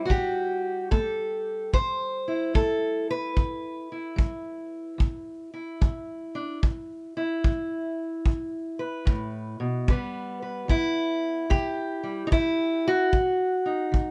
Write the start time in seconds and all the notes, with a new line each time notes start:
Already playing: G3
0.05 A2 F#4
0.10 G4, kick
0.91 A3 A4, kick
1.73 E2 C5, kick
2.28 E4
2.54 A3 A4, kick
3.11 B4
3.36 E2, kick
3.92 E4
4.16 G3, kick
4.98 E2, kick
5.54 E4
5.81 G3, kick
6.35 D4
6.63 E2, kick
7.17 E4
7.44 G3, kick
8.25 E2, kick
8.79 B4
9.05 A2, kick
9.60 B2
9.88 C3 G3 B3 B4, kick
10.42 B4
10.68 G3 E4, kick
11.50 C3 G4, kick
12.03 G3
12.27 G3 D#4
12.32 E4, kick
12.88 F#4
13.12 B2, kick
13.66 D#4
13.92 D#3, kick